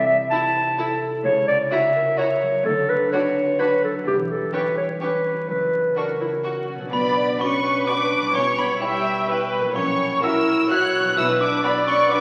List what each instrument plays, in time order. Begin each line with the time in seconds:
Already playing: cello section C2, double bass section C2, harp C3 E4 A4 C5 E5
0.07 harp C4, clarinet E5
0.31 harp E4, viola section E4, violin section E4 A5, clarinet A5
0.55 harp C5
0.77 violin section E4 A5, viola section E4, harp A4
1.02 harp E4
1.24 double bass section C#2, cello section C#2, harp C#3, clarinet C#5
1.48 harp C#4, clarinet D5
1.71 viola section E4, violin section F#4 A#5, harp F#4, clarinet E5
1.95 harp A#4
2.17 viola section E4, violin section F#4 A#5, harp F#4, clarinet C#5
2.42 harp F#3
2.65 cello section D2, double bass section D2, harp D3, clarinet A4
2.90 harp D4, clarinet B4
3.12 viola section D4, violin section F#4 B5, harp F#4, clarinet C#5
3.36 harp B4
3.59 viola section D4, violin section F#4 B5, harp F#4, clarinet B4
3.83 harp F#3, clarinet A4
4.06 double bass section E1, cello section E2, harp E3, clarinet G4
4.30 harp G3, clarinet A4
4.53 viola section C#4, violin section G4 C#6, clarinet B4, harp C#5
4.77 harp G4, clarinet C#5
5.00 viola section C#4, violin section G4 C#6, clarinet B4, harp C#5
5.25 harp C#4
5.49 double bass section F#1, cello section F#2, harp F#2, clarinet B4
5.73 harp C#3
5.96 harp C#4, viola section D4, violin section F#4 C#6, clarinet A#4
6.20 viola section E4, harp C#5
6.44 violin section F#4 C#6, viola section F#4, harp F#4
6.69 harp C#4
6.75 harp B2
6.80 harp F#3
6.84 harp D4
6.89 cello section B2, french horn section B3, harp B4, viola section D5
6.93 double bass section B1, violin section B5, glockenspiel B5
7.40 french horn section C#4, violin section F#4 D5 C#6, viola section B4, glockenspiel C#6
7.86 french horn section D4, violin section F#4 D5 D6, glockenspiel D6
8.17 harp B2
8.21 harp G3
8.26 harp E4
8.30 harp C#5
8.34 double bass section B1, cello section B2, french horn section C#4, viola section C#5, glockenspiel C#6, violin section C#6
8.57 french horn section B3, violin section B5, glockenspiel B5
8.81 french horn section G3, violin section E4 C#5 G5, viola section E5, glockenspiel G5
9.29 violin section E4 C#5, viola section B4
9.58 harp A#2
9.63 harp F#3
9.67 harp E4
9.72 harp C#5
9.76 double bass section A#1, cello section A#2, french horn section C#4, viola section C#5, glockenspiel C#6, violin section C#6
10.23 french horn section E4, violin section F#4 E5 E6, viola section A#4, glockenspiel E6
10.70 french horn section F#4, violin section F#4 E5 F#6, viola section C#5, glockenspiel F#6
10.99 harp B2
11.03 harp F#3
11.08 harp D4
11.12 harp B4
11.17 double bass section B1, cello section B2, french horn section E4, viola section B4, glockenspiel E6, violin section E6
11.41 french horn section D4, glockenspiel D6, violin section D6
11.63 french horn section B3, violin section F#4 D5 B5, viola section D5, glockenspiel B5
11.87 french horn section C#4, violin section C#6, glockenspiel C#6
12.11 french horn section D4, violin section F#4 D5 D6, viola section B4, glockenspiel D6